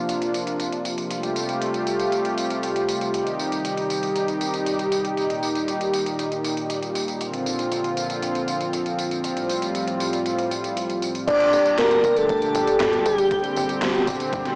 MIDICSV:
0, 0, Header, 1, 6, 480
1, 0, Start_track
1, 0, Key_signature, -2, "minor"
1, 0, Tempo, 508475
1, 1044, Time_signature, 4, 2, 24, 8
1, 13738, End_track
2, 0, Start_track
2, 0, Title_t, "Digital synth lead"
2, 0, Program_c, 0, 84
2, 10644, Note_on_c, 0, 86, 116
2, 11091, Note_off_c, 0, 86, 0
2, 11125, Note_on_c, 0, 82, 103
2, 11486, Note_on_c, 0, 81, 100
2, 11500, Note_off_c, 0, 82, 0
2, 12320, Note_off_c, 0, 81, 0
2, 12326, Note_on_c, 0, 79, 88
2, 12771, Note_off_c, 0, 79, 0
2, 13738, End_track
3, 0, Start_track
3, 0, Title_t, "Soft synth lead"
3, 0, Program_c, 1, 80
3, 10643, Note_on_c, 1, 74, 124
3, 11090, Note_off_c, 1, 74, 0
3, 11126, Note_on_c, 1, 70, 102
3, 11486, Note_on_c, 1, 69, 105
3, 11501, Note_off_c, 1, 70, 0
3, 12321, Note_off_c, 1, 69, 0
3, 12326, Note_on_c, 1, 67, 85
3, 12772, Note_off_c, 1, 67, 0
3, 13738, End_track
4, 0, Start_track
4, 0, Title_t, "Analog synth pad"
4, 0, Program_c, 2, 89
4, 0, Note_on_c, 2, 48, 79
4, 0, Note_on_c, 2, 53, 72
4, 0, Note_on_c, 2, 58, 73
4, 0, Note_on_c, 2, 62, 73
4, 0, Note_on_c, 2, 65, 88
4, 1025, Note_off_c, 2, 53, 0
4, 1025, Note_off_c, 2, 58, 0
4, 1025, Note_off_c, 2, 62, 0
4, 1025, Note_off_c, 2, 65, 0
4, 1045, Note_on_c, 2, 55, 71
4, 1045, Note_on_c, 2, 57, 74
4, 1046, Note_on_c, 2, 65, 73
4, 1046, Note_on_c, 2, 67, 87
4, 2945, Note_off_c, 2, 57, 0
4, 2946, Note_off_c, 2, 65, 0
4, 2946, Note_off_c, 2, 67, 0
4, 2963, Note_on_c, 2, 51, 73
4, 2964, Note_on_c, 2, 63, 74
4, 2964, Note_on_c, 2, 67, 87
4, 4847, Note_off_c, 2, 48, 0
4, 4864, Note_off_c, 2, 51, 0
4, 4884, Note_on_c, 2, 46, 80
4, 4884, Note_on_c, 2, 51, 72
4, 6766, Note_off_c, 2, 63, 0
4, 6766, Note_off_c, 2, 67, 0
4, 6767, Note_off_c, 2, 55, 0
4, 6785, Note_off_c, 2, 51, 0
4, 6802, Note_on_c, 2, 50, 74
4, 6802, Note_on_c, 2, 53, 71
4, 6802, Note_on_c, 2, 60, 72
4, 6802, Note_on_c, 2, 65, 87
4, 8686, Note_off_c, 2, 46, 0
4, 8704, Note_off_c, 2, 50, 0
4, 8704, Note_off_c, 2, 65, 0
4, 8723, Note_on_c, 2, 45, 80
4, 8723, Note_on_c, 2, 55, 73
4, 8723, Note_on_c, 2, 65, 89
4, 10605, Note_off_c, 2, 53, 0
4, 10605, Note_off_c, 2, 60, 0
4, 10624, Note_off_c, 2, 45, 0
4, 10624, Note_off_c, 2, 55, 0
4, 10624, Note_off_c, 2, 65, 0
4, 10643, Note_on_c, 2, 50, 78
4, 10643, Note_on_c, 2, 67, 93
4, 10644, Note_on_c, 2, 46, 81
4, 10644, Note_on_c, 2, 55, 77
4, 10644, Note_on_c, 2, 62, 77
4, 12545, Note_off_c, 2, 62, 0
4, 12563, Note_on_c, 2, 60, 77
4, 13738, Note_off_c, 2, 46, 0
4, 13738, Note_off_c, 2, 50, 0
4, 13738, Note_off_c, 2, 55, 0
4, 13738, Note_off_c, 2, 60, 0
4, 13738, Note_off_c, 2, 67, 0
4, 13738, End_track
5, 0, Start_track
5, 0, Title_t, "Analog synth bass"
5, 0, Program_c, 3, 38
5, 10643, Note_on_c, 3, 31, 100
5, 10730, Note_off_c, 3, 31, 0
5, 10884, Note_on_c, 3, 31, 85
5, 10970, Note_off_c, 3, 31, 0
5, 11124, Note_on_c, 3, 31, 82
5, 11296, Note_off_c, 3, 31, 0
5, 11364, Note_on_c, 3, 31, 108
5, 11536, Note_off_c, 3, 31, 0
5, 11604, Note_on_c, 3, 31, 100
5, 11776, Note_off_c, 3, 31, 0
5, 11844, Note_on_c, 3, 31, 104
5, 12016, Note_off_c, 3, 31, 0
5, 12084, Note_on_c, 3, 43, 82
5, 12256, Note_off_c, 3, 43, 0
5, 12324, Note_on_c, 3, 38, 94
5, 12496, Note_off_c, 3, 38, 0
5, 12564, Note_on_c, 3, 31, 85
5, 12736, Note_off_c, 3, 31, 0
5, 12805, Note_on_c, 3, 31, 83
5, 12977, Note_off_c, 3, 31, 0
5, 13044, Note_on_c, 3, 31, 97
5, 13216, Note_off_c, 3, 31, 0
5, 13284, Note_on_c, 3, 31, 105
5, 13456, Note_off_c, 3, 31, 0
5, 13524, Note_on_c, 3, 31, 85
5, 13610, Note_off_c, 3, 31, 0
5, 13738, End_track
6, 0, Start_track
6, 0, Title_t, "Drums"
6, 84, Note_on_c, 9, 42, 88
6, 84, Note_on_c, 9, 54, 35
6, 178, Note_off_c, 9, 42, 0
6, 178, Note_off_c, 9, 54, 0
6, 205, Note_on_c, 9, 42, 38
6, 205, Note_on_c, 9, 54, 18
6, 299, Note_off_c, 9, 42, 0
6, 299, Note_off_c, 9, 54, 0
6, 324, Note_on_c, 9, 42, 64
6, 324, Note_on_c, 9, 54, 62
6, 418, Note_off_c, 9, 42, 0
6, 418, Note_off_c, 9, 54, 0
6, 444, Note_on_c, 9, 42, 39
6, 444, Note_on_c, 9, 54, 27
6, 538, Note_off_c, 9, 42, 0
6, 538, Note_off_c, 9, 54, 0
6, 563, Note_on_c, 9, 42, 87
6, 563, Note_on_c, 9, 54, 35
6, 658, Note_off_c, 9, 42, 0
6, 658, Note_off_c, 9, 54, 0
6, 684, Note_on_c, 9, 42, 38
6, 684, Note_on_c, 9, 54, 18
6, 779, Note_off_c, 9, 42, 0
6, 779, Note_off_c, 9, 54, 0
6, 804, Note_on_c, 9, 42, 61
6, 804, Note_on_c, 9, 54, 62
6, 898, Note_off_c, 9, 42, 0
6, 898, Note_off_c, 9, 54, 0
6, 924, Note_on_c, 9, 42, 37
6, 924, Note_on_c, 9, 54, 26
6, 1018, Note_off_c, 9, 42, 0
6, 1018, Note_off_c, 9, 54, 0
6, 1044, Note_on_c, 9, 42, 84
6, 1044, Note_on_c, 9, 54, 37
6, 1138, Note_off_c, 9, 42, 0
6, 1138, Note_off_c, 9, 54, 0
6, 1164, Note_on_c, 9, 42, 36
6, 1164, Note_on_c, 9, 54, 17
6, 1258, Note_off_c, 9, 42, 0
6, 1258, Note_off_c, 9, 54, 0
6, 1283, Note_on_c, 9, 42, 34
6, 1283, Note_on_c, 9, 54, 63
6, 1378, Note_off_c, 9, 42, 0
6, 1378, Note_off_c, 9, 54, 0
6, 1404, Note_on_c, 9, 42, 36
6, 1404, Note_on_c, 9, 54, 27
6, 1498, Note_off_c, 9, 42, 0
6, 1498, Note_off_c, 9, 54, 0
6, 1524, Note_on_c, 9, 42, 87
6, 1524, Note_on_c, 9, 54, 37
6, 1618, Note_off_c, 9, 42, 0
6, 1618, Note_off_c, 9, 54, 0
6, 1644, Note_on_c, 9, 42, 36
6, 1644, Note_on_c, 9, 54, 18
6, 1738, Note_off_c, 9, 42, 0
6, 1738, Note_off_c, 9, 54, 0
6, 1763, Note_on_c, 9, 42, 62
6, 1763, Note_on_c, 9, 54, 62
6, 1858, Note_off_c, 9, 42, 0
6, 1858, Note_off_c, 9, 54, 0
6, 1884, Note_on_c, 9, 42, 37
6, 1884, Note_on_c, 9, 54, 27
6, 1978, Note_off_c, 9, 42, 0
6, 1978, Note_off_c, 9, 54, 0
6, 2004, Note_on_c, 9, 42, 84
6, 2004, Note_on_c, 9, 54, 36
6, 2098, Note_off_c, 9, 42, 0
6, 2098, Note_off_c, 9, 54, 0
6, 2124, Note_on_c, 9, 42, 37
6, 2124, Note_on_c, 9, 54, 18
6, 2219, Note_off_c, 9, 42, 0
6, 2219, Note_off_c, 9, 54, 0
6, 2244, Note_on_c, 9, 42, 61
6, 2244, Note_on_c, 9, 54, 62
6, 2339, Note_off_c, 9, 42, 0
6, 2339, Note_off_c, 9, 54, 0
6, 2365, Note_on_c, 9, 42, 36
6, 2365, Note_on_c, 9, 54, 26
6, 2459, Note_off_c, 9, 42, 0
6, 2459, Note_off_c, 9, 54, 0
6, 2485, Note_on_c, 9, 42, 85
6, 2485, Note_on_c, 9, 54, 35
6, 2579, Note_off_c, 9, 42, 0
6, 2579, Note_off_c, 9, 54, 0
6, 2605, Note_on_c, 9, 42, 37
6, 2605, Note_on_c, 9, 54, 17
6, 2699, Note_off_c, 9, 42, 0
6, 2699, Note_off_c, 9, 54, 0
6, 2724, Note_on_c, 9, 42, 61
6, 2724, Note_on_c, 9, 54, 62
6, 2819, Note_off_c, 9, 42, 0
6, 2819, Note_off_c, 9, 54, 0
6, 2844, Note_on_c, 9, 42, 36
6, 2844, Note_on_c, 9, 54, 26
6, 2939, Note_off_c, 9, 42, 0
6, 2939, Note_off_c, 9, 54, 0
6, 2964, Note_on_c, 9, 42, 83
6, 2964, Note_on_c, 9, 54, 38
6, 3059, Note_off_c, 9, 42, 0
6, 3059, Note_off_c, 9, 54, 0
6, 3084, Note_on_c, 9, 42, 35
6, 3084, Note_on_c, 9, 54, 19
6, 3178, Note_off_c, 9, 42, 0
6, 3178, Note_off_c, 9, 54, 0
6, 3204, Note_on_c, 9, 54, 65
6, 3298, Note_off_c, 9, 54, 0
6, 3324, Note_on_c, 9, 42, 35
6, 3324, Note_on_c, 9, 54, 29
6, 3419, Note_off_c, 9, 42, 0
6, 3419, Note_off_c, 9, 54, 0
6, 3444, Note_on_c, 9, 42, 83
6, 3444, Note_on_c, 9, 54, 38
6, 3538, Note_off_c, 9, 42, 0
6, 3538, Note_off_c, 9, 54, 0
6, 3564, Note_on_c, 9, 42, 35
6, 3564, Note_on_c, 9, 54, 19
6, 3658, Note_off_c, 9, 42, 0
6, 3658, Note_off_c, 9, 54, 0
6, 3684, Note_on_c, 9, 42, 60
6, 3684, Note_on_c, 9, 54, 67
6, 3778, Note_off_c, 9, 42, 0
6, 3778, Note_off_c, 9, 54, 0
6, 3805, Note_on_c, 9, 42, 36
6, 3805, Note_on_c, 9, 54, 28
6, 3899, Note_off_c, 9, 42, 0
6, 3899, Note_off_c, 9, 54, 0
6, 3925, Note_on_c, 9, 42, 83
6, 3925, Note_on_c, 9, 54, 36
6, 4019, Note_off_c, 9, 42, 0
6, 4019, Note_off_c, 9, 54, 0
6, 4044, Note_on_c, 9, 42, 36
6, 4044, Note_on_c, 9, 54, 19
6, 4139, Note_off_c, 9, 42, 0
6, 4139, Note_off_c, 9, 54, 0
6, 4164, Note_on_c, 9, 42, 60
6, 4164, Note_on_c, 9, 54, 67
6, 4258, Note_off_c, 9, 42, 0
6, 4258, Note_off_c, 9, 54, 0
6, 4284, Note_on_c, 9, 42, 35
6, 4284, Note_on_c, 9, 54, 28
6, 4378, Note_off_c, 9, 42, 0
6, 4378, Note_off_c, 9, 54, 0
6, 4403, Note_on_c, 9, 42, 82
6, 4403, Note_on_c, 9, 54, 37
6, 4498, Note_off_c, 9, 42, 0
6, 4498, Note_off_c, 9, 54, 0
6, 4523, Note_on_c, 9, 42, 35
6, 4523, Note_on_c, 9, 54, 18
6, 4618, Note_off_c, 9, 42, 0
6, 4618, Note_off_c, 9, 54, 0
6, 4643, Note_on_c, 9, 42, 60
6, 4643, Note_on_c, 9, 54, 65
6, 4738, Note_off_c, 9, 42, 0
6, 4738, Note_off_c, 9, 54, 0
6, 4763, Note_on_c, 9, 42, 35
6, 4763, Note_on_c, 9, 54, 28
6, 4857, Note_off_c, 9, 42, 0
6, 4857, Note_off_c, 9, 54, 0
6, 4883, Note_on_c, 9, 42, 83
6, 4883, Note_on_c, 9, 54, 39
6, 4978, Note_off_c, 9, 42, 0
6, 4978, Note_off_c, 9, 54, 0
6, 5004, Note_on_c, 9, 42, 36
6, 5004, Note_on_c, 9, 54, 19
6, 5098, Note_off_c, 9, 42, 0
6, 5098, Note_off_c, 9, 54, 0
6, 5123, Note_on_c, 9, 54, 66
6, 5218, Note_off_c, 9, 54, 0
6, 5243, Note_on_c, 9, 42, 35
6, 5243, Note_on_c, 9, 54, 28
6, 5338, Note_off_c, 9, 42, 0
6, 5338, Note_off_c, 9, 54, 0
6, 5363, Note_on_c, 9, 42, 83
6, 5363, Note_on_c, 9, 54, 40
6, 5458, Note_off_c, 9, 42, 0
6, 5458, Note_off_c, 9, 54, 0
6, 5484, Note_on_c, 9, 42, 35
6, 5484, Note_on_c, 9, 54, 19
6, 5578, Note_off_c, 9, 42, 0
6, 5578, Note_off_c, 9, 54, 0
6, 5603, Note_on_c, 9, 42, 59
6, 5603, Note_on_c, 9, 54, 68
6, 5698, Note_off_c, 9, 42, 0
6, 5698, Note_off_c, 9, 54, 0
6, 5723, Note_on_c, 9, 42, 36
6, 5723, Note_on_c, 9, 54, 29
6, 5818, Note_off_c, 9, 42, 0
6, 5818, Note_off_c, 9, 54, 0
6, 5843, Note_on_c, 9, 42, 81
6, 5843, Note_on_c, 9, 54, 39
6, 5937, Note_off_c, 9, 42, 0
6, 5937, Note_off_c, 9, 54, 0
6, 5963, Note_on_c, 9, 42, 36
6, 5963, Note_on_c, 9, 54, 20
6, 6058, Note_off_c, 9, 42, 0
6, 6058, Note_off_c, 9, 54, 0
6, 6083, Note_on_c, 9, 42, 60
6, 6083, Note_on_c, 9, 54, 69
6, 6177, Note_off_c, 9, 42, 0
6, 6177, Note_off_c, 9, 54, 0
6, 6203, Note_on_c, 9, 42, 34
6, 6203, Note_on_c, 9, 54, 29
6, 6297, Note_off_c, 9, 42, 0
6, 6297, Note_off_c, 9, 54, 0
6, 6323, Note_on_c, 9, 42, 81
6, 6323, Note_on_c, 9, 54, 39
6, 6417, Note_off_c, 9, 42, 0
6, 6417, Note_off_c, 9, 54, 0
6, 6443, Note_on_c, 9, 42, 36
6, 6443, Note_on_c, 9, 54, 20
6, 6537, Note_off_c, 9, 42, 0
6, 6537, Note_off_c, 9, 54, 0
6, 6563, Note_on_c, 9, 42, 61
6, 6563, Note_on_c, 9, 54, 71
6, 6658, Note_off_c, 9, 42, 0
6, 6658, Note_off_c, 9, 54, 0
6, 6684, Note_on_c, 9, 42, 35
6, 6684, Note_on_c, 9, 54, 29
6, 6778, Note_off_c, 9, 42, 0
6, 6778, Note_off_c, 9, 54, 0
6, 6803, Note_on_c, 9, 42, 87
6, 6803, Note_on_c, 9, 54, 40
6, 6898, Note_off_c, 9, 42, 0
6, 6898, Note_off_c, 9, 54, 0
6, 6924, Note_on_c, 9, 42, 37
6, 6924, Note_on_c, 9, 54, 19
6, 7018, Note_off_c, 9, 42, 0
6, 7018, Note_off_c, 9, 54, 0
6, 7044, Note_on_c, 9, 54, 71
6, 7139, Note_off_c, 9, 54, 0
6, 7165, Note_on_c, 9, 42, 37
6, 7165, Note_on_c, 9, 54, 30
6, 7259, Note_off_c, 9, 42, 0
6, 7259, Note_off_c, 9, 54, 0
6, 7284, Note_on_c, 9, 42, 87
6, 7284, Note_on_c, 9, 54, 40
6, 7379, Note_off_c, 9, 42, 0
6, 7379, Note_off_c, 9, 54, 0
6, 7404, Note_on_c, 9, 42, 37
6, 7404, Note_on_c, 9, 54, 20
6, 7499, Note_off_c, 9, 42, 0
6, 7499, Note_off_c, 9, 54, 0
6, 7524, Note_on_c, 9, 42, 62
6, 7524, Note_on_c, 9, 54, 70
6, 7619, Note_off_c, 9, 42, 0
6, 7619, Note_off_c, 9, 54, 0
6, 7645, Note_on_c, 9, 42, 37
6, 7645, Note_on_c, 9, 54, 30
6, 7740, Note_off_c, 9, 42, 0
6, 7740, Note_off_c, 9, 54, 0
6, 7765, Note_on_c, 9, 42, 84
6, 7765, Note_on_c, 9, 54, 39
6, 7859, Note_off_c, 9, 42, 0
6, 7859, Note_off_c, 9, 54, 0
6, 7885, Note_on_c, 9, 42, 38
6, 7885, Note_on_c, 9, 54, 20
6, 7979, Note_off_c, 9, 42, 0
6, 7979, Note_off_c, 9, 54, 0
6, 8004, Note_on_c, 9, 42, 61
6, 8004, Note_on_c, 9, 54, 71
6, 8098, Note_off_c, 9, 42, 0
6, 8098, Note_off_c, 9, 54, 0
6, 8125, Note_on_c, 9, 42, 37
6, 8125, Note_on_c, 9, 54, 30
6, 8219, Note_off_c, 9, 42, 0
6, 8219, Note_off_c, 9, 54, 0
6, 8244, Note_on_c, 9, 42, 87
6, 8244, Note_on_c, 9, 54, 39
6, 8338, Note_off_c, 9, 42, 0
6, 8338, Note_off_c, 9, 54, 0
6, 8364, Note_on_c, 9, 42, 38
6, 8364, Note_on_c, 9, 54, 20
6, 8458, Note_off_c, 9, 42, 0
6, 8458, Note_off_c, 9, 54, 0
6, 8484, Note_on_c, 9, 42, 63
6, 8484, Note_on_c, 9, 54, 71
6, 8578, Note_off_c, 9, 42, 0
6, 8578, Note_off_c, 9, 54, 0
6, 8604, Note_on_c, 9, 42, 37
6, 8604, Note_on_c, 9, 54, 30
6, 8698, Note_off_c, 9, 42, 0
6, 8698, Note_off_c, 9, 54, 0
6, 8723, Note_on_c, 9, 42, 91
6, 8723, Note_on_c, 9, 54, 39
6, 8818, Note_off_c, 9, 42, 0
6, 8818, Note_off_c, 9, 54, 0
6, 8843, Note_on_c, 9, 42, 38
6, 8843, Note_on_c, 9, 54, 19
6, 8938, Note_off_c, 9, 42, 0
6, 8938, Note_off_c, 9, 54, 0
6, 8964, Note_on_c, 9, 42, 35
6, 8964, Note_on_c, 9, 54, 67
6, 9058, Note_off_c, 9, 42, 0
6, 9058, Note_off_c, 9, 54, 0
6, 9083, Note_on_c, 9, 42, 39
6, 9083, Note_on_c, 9, 54, 29
6, 9177, Note_off_c, 9, 42, 0
6, 9177, Note_off_c, 9, 54, 0
6, 9203, Note_on_c, 9, 42, 91
6, 9203, Note_on_c, 9, 54, 39
6, 9297, Note_off_c, 9, 42, 0
6, 9297, Note_off_c, 9, 54, 0
6, 9323, Note_on_c, 9, 42, 39
6, 9323, Note_on_c, 9, 54, 20
6, 9417, Note_off_c, 9, 42, 0
6, 9417, Note_off_c, 9, 54, 0
6, 9443, Note_on_c, 9, 42, 65
6, 9443, Note_on_c, 9, 54, 70
6, 9538, Note_off_c, 9, 42, 0
6, 9538, Note_off_c, 9, 54, 0
6, 9563, Note_on_c, 9, 42, 38
6, 9563, Note_on_c, 9, 54, 29
6, 9658, Note_off_c, 9, 42, 0
6, 9658, Note_off_c, 9, 54, 0
6, 9683, Note_on_c, 9, 42, 87
6, 9683, Note_on_c, 9, 54, 39
6, 9778, Note_off_c, 9, 42, 0
6, 9778, Note_off_c, 9, 54, 0
6, 9804, Note_on_c, 9, 42, 39
6, 9804, Note_on_c, 9, 54, 20
6, 9898, Note_off_c, 9, 42, 0
6, 9898, Note_off_c, 9, 54, 0
6, 9924, Note_on_c, 9, 42, 64
6, 9924, Note_on_c, 9, 54, 68
6, 10019, Note_off_c, 9, 42, 0
6, 10019, Note_off_c, 9, 54, 0
6, 10044, Note_on_c, 9, 42, 37
6, 10044, Note_on_c, 9, 54, 29
6, 10139, Note_off_c, 9, 42, 0
6, 10139, Note_off_c, 9, 54, 0
6, 10165, Note_on_c, 9, 42, 89
6, 10165, Note_on_c, 9, 54, 40
6, 10259, Note_off_c, 9, 42, 0
6, 10259, Note_off_c, 9, 54, 0
6, 10285, Note_on_c, 9, 42, 38
6, 10285, Note_on_c, 9, 54, 20
6, 10379, Note_off_c, 9, 42, 0
6, 10379, Note_off_c, 9, 54, 0
6, 10404, Note_on_c, 9, 42, 65
6, 10404, Note_on_c, 9, 54, 70
6, 10499, Note_off_c, 9, 42, 0
6, 10499, Note_off_c, 9, 54, 0
6, 10525, Note_on_c, 9, 42, 39
6, 10525, Note_on_c, 9, 54, 30
6, 10619, Note_off_c, 9, 42, 0
6, 10619, Note_off_c, 9, 54, 0
6, 10643, Note_on_c, 9, 36, 120
6, 10644, Note_on_c, 9, 42, 98
6, 10644, Note_on_c, 9, 49, 107
6, 10644, Note_on_c, 9, 54, 40
6, 10738, Note_off_c, 9, 36, 0
6, 10739, Note_off_c, 9, 42, 0
6, 10739, Note_off_c, 9, 49, 0
6, 10739, Note_off_c, 9, 54, 0
6, 10764, Note_on_c, 9, 42, 40
6, 10764, Note_on_c, 9, 54, 20
6, 10859, Note_off_c, 9, 42, 0
6, 10859, Note_off_c, 9, 54, 0
6, 10884, Note_on_c, 9, 54, 72
6, 10978, Note_off_c, 9, 54, 0
6, 11004, Note_on_c, 9, 42, 42
6, 11004, Note_on_c, 9, 54, 30
6, 11099, Note_off_c, 9, 42, 0
6, 11099, Note_off_c, 9, 54, 0
6, 11124, Note_on_c, 9, 38, 121
6, 11124, Note_on_c, 9, 39, 103
6, 11124, Note_on_c, 9, 42, 99
6, 11124, Note_on_c, 9, 54, 40
6, 11218, Note_off_c, 9, 38, 0
6, 11218, Note_off_c, 9, 39, 0
6, 11218, Note_off_c, 9, 42, 0
6, 11218, Note_off_c, 9, 54, 0
6, 11244, Note_on_c, 9, 42, 42
6, 11244, Note_on_c, 9, 54, 20
6, 11338, Note_off_c, 9, 42, 0
6, 11338, Note_off_c, 9, 54, 0
6, 11363, Note_on_c, 9, 36, 62
6, 11364, Note_on_c, 9, 42, 70
6, 11364, Note_on_c, 9, 54, 71
6, 11458, Note_off_c, 9, 36, 0
6, 11459, Note_off_c, 9, 42, 0
6, 11459, Note_off_c, 9, 54, 0
6, 11484, Note_on_c, 9, 42, 43
6, 11484, Note_on_c, 9, 54, 30
6, 11578, Note_off_c, 9, 42, 0
6, 11578, Note_off_c, 9, 54, 0
6, 11604, Note_on_c, 9, 36, 121
6, 11604, Note_on_c, 9, 42, 98
6, 11604, Note_on_c, 9, 54, 38
6, 11698, Note_off_c, 9, 36, 0
6, 11699, Note_off_c, 9, 42, 0
6, 11699, Note_off_c, 9, 54, 0
6, 11724, Note_on_c, 9, 42, 43
6, 11724, Note_on_c, 9, 54, 20
6, 11818, Note_off_c, 9, 42, 0
6, 11818, Note_off_c, 9, 54, 0
6, 11845, Note_on_c, 9, 42, 70
6, 11845, Note_on_c, 9, 54, 72
6, 11939, Note_off_c, 9, 42, 0
6, 11939, Note_off_c, 9, 54, 0
6, 11964, Note_on_c, 9, 42, 42
6, 11964, Note_on_c, 9, 54, 30
6, 12059, Note_off_c, 9, 42, 0
6, 12059, Note_off_c, 9, 54, 0
6, 12085, Note_on_c, 9, 38, 116
6, 12085, Note_on_c, 9, 39, 100
6, 12085, Note_on_c, 9, 42, 96
6, 12085, Note_on_c, 9, 54, 40
6, 12179, Note_off_c, 9, 38, 0
6, 12179, Note_off_c, 9, 39, 0
6, 12179, Note_off_c, 9, 42, 0
6, 12179, Note_off_c, 9, 54, 0
6, 12205, Note_on_c, 9, 42, 42
6, 12205, Note_on_c, 9, 54, 20
6, 12299, Note_off_c, 9, 42, 0
6, 12299, Note_off_c, 9, 54, 0
6, 12325, Note_on_c, 9, 42, 70
6, 12325, Note_on_c, 9, 54, 70
6, 12420, Note_off_c, 9, 42, 0
6, 12420, Note_off_c, 9, 54, 0
6, 12445, Note_on_c, 9, 42, 42
6, 12445, Note_on_c, 9, 54, 30
6, 12540, Note_off_c, 9, 42, 0
6, 12540, Note_off_c, 9, 54, 0
6, 12564, Note_on_c, 9, 36, 121
6, 12564, Note_on_c, 9, 42, 100
6, 12564, Note_on_c, 9, 54, 39
6, 12658, Note_off_c, 9, 36, 0
6, 12659, Note_off_c, 9, 42, 0
6, 12659, Note_off_c, 9, 54, 0
6, 12684, Note_on_c, 9, 42, 42
6, 12684, Note_on_c, 9, 54, 20
6, 12778, Note_off_c, 9, 42, 0
6, 12778, Note_off_c, 9, 54, 0
6, 12804, Note_on_c, 9, 54, 69
6, 12898, Note_off_c, 9, 54, 0
6, 12924, Note_on_c, 9, 42, 41
6, 12924, Note_on_c, 9, 54, 29
6, 13018, Note_off_c, 9, 42, 0
6, 13018, Note_off_c, 9, 54, 0
6, 13044, Note_on_c, 9, 38, 125
6, 13044, Note_on_c, 9, 39, 97
6, 13044, Note_on_c, 9, 42, 99
6, 13044, Note_on_c, 9, 54, 40
6, 13138, Note_off_c, 9, 38, 0
6, 13138, Note_off_c, 9, 39, 0
6, 13138, Note_off_c, 9, 42, 0
6, 13138, Note_off_c, 9, 54, 0
6, 13165, Note_on_c, 9, 42, 43
6, 13165, Note_on_c, 9, 54, 19
6, 13259, Note_off_c, 9, 42, 0
6, 13259, Note_off_c, 9, 54, 0
6, 13284, Note_on_c, 9, 36, 64
6, 13284, Note_on_c, 9, 42, 74
6, 13284, Note_on_c, 9, 54, 69
6, 13378, Note_off_c, 9, 36, 0
6, 13379, Note_off_c, 9, 42, 0
6, 13379, Note_off_c, 9, 54, 0
6, 13405, Note_on_c, 9, 42, 43
6, 13405, Note_on_c, 9, 54, 29
6, 13499, Note_off_c, 9, 42, 0
6, 13499, Note_off_c, 9, 54, 0
6, 13524, Note_on_c, 9, 36, 127
6, 13525, Note_on_c, 9, 42, 95
6, 13525, Note_on_c, 9, 54, 38
6, 13618, Note_off_c, 9, 36, 0
6, 13619, Note_off_c, 9, 42, 0
6, 13619, Note_off_c, 9, 54, 0
6, 13644, Note_on_c, 9, 38, 39
6, 13644, Note_on_c, 9, 42, 44
6, 13644, Note_on_c, 9, 54, 19
6, 13738, Note_off_c, 9, 38, 0
6, 13738, Note_off_c, 9, 42, 0
6, 13738, Note_off_c, 9, 54, 0
6, 13738, End_track
0, 0, End_of_file